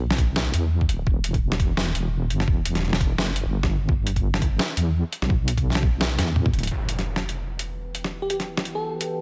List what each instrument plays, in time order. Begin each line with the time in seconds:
Already playing: wobble bass B1
0.11 snare
0.18 kick, closed hi-hat
0.36 snare
0.54 wobble bass E2, closed hi-hat
0.81 kick
0.89 wobble bass D1, closed hi-hat
1.07 wobble bass E1, kick
1.24 closed hi-hat
1.34 kick, closed hi-hat
1.52 snare
1.60 kick, closed hi-hat
1.77 snare
1.95 wobble bass E1, closed hi-hat
2.30 wobble bass G1, closed hi-hat
2.40 snare
2.48 wobble bass E1, kick
2.65 closed hi-hat
2.75 snare, closed hi-hat
2.79 snare
2.83 snare
2.88 snare
2.93 snare
3.01 kick, closed hi-hat
3.18 wobble bass F#1, snare
3.36 closed hi-hat
3.46 wobble bass G1
3.63 kick, snare
3.89 kick
4.07 closed hi-hat
4.16 kick, closed hi-hat
4.34 snare
4.42 kick, closed hi-hat
4.59 snare
4.77 wobble bass E2, closed hi-hat
5.13 closed hi-hat
5.22 wobble bass B1, snare
5.30 kick
5.48 closed hi-hat
5.58 kick, closed hi-hat
5.70 snare
5.75 snare
5.83 kick
6.01 snare
6.18 wobble bass E2, snare, closed hi-hat
6.36 mid tom
6.46 kick, mid tom
6.54 wobble bass D1, closed hi-hat
6.59 closed hi-hat
6.63 closed hi-hat
6.67 closed hi-hat, impact
6.71 ambient pad E4 B4
6.86 ambient pad G5, closed hi-hat
6.99 snare, closed hi-hat
7.05 ambient pad F#5
7.16 snare
7.29 closed hi-hat
7.59 closed hi-hat
7.95 closed hi-hat
8.04 snare
8.22 fm electric piano G4
8.30 fm electric piano G4, closed hi-hat
8.40 snare, closed hi-hat
8.57 snare
8.65 closed hi-hat
8.75 fm electric piano A4
9.01 closed hi-hat